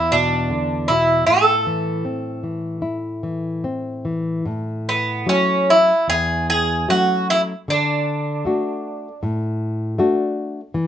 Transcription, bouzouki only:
0.00 0.15 E4 medium
0.12 0.92 D4 medium
0.88 1.26 E4 medium
1.27 3.60 A4 medium
4.89 5.29 B3 medium
5.29 5.69 C#4 medium
5.70 6.09 E4 medium
6.10 6.46 G#4 loud
6.50 6.90 G#4 loud
6.90 7.27 F#4 medium
7.30 7.41 E4 loud
7.70 9.20 D4 medium

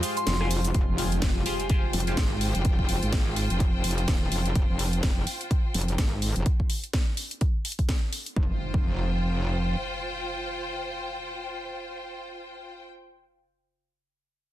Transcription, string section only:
0.00 0.73 F4 medium
0.00 0.75 C5 medium
0.00 0.75 G5 medium
0.74 6.46 F4 medium
0.94 6.46 G5 medium
1.12 6.46 C5 medium
8.36 12.73 F4 medium
8.45 12.81 C5 medium
8.52 12.88 G5 medium

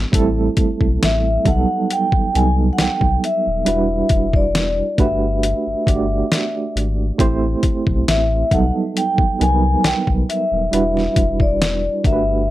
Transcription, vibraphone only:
1.04 1.48 E5 loud
1.48 1.92 F#5 medium
1.92 2.36 G5 loud
2.36 2.52 G#5 loud
2.73 2.78 F#5 medium
2.80 3.20 G5 loud
3.25 4.31 E5 loud
4.36 4.95 D5 medium
5.00 6.72 E5 medium
8.09 8.53 E5 loud
8.52 8.72 F#5 medium
8.98 9.37 G5 loud
9.41 9.81 G#5 loud
9.85 10.05 G5 medium
10.29 11.44 E5 medium
11.42 12.01 D5 medium
12.06 12.51 E5 medium

